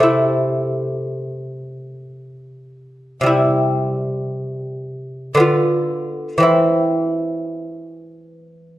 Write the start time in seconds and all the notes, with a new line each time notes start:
Already playing: C3
0.00 A3 E4
3.21 C3 G3
3.26 E4
5.35 D3 B3
5.40 F4
6.38 E3 C4
6.43 E4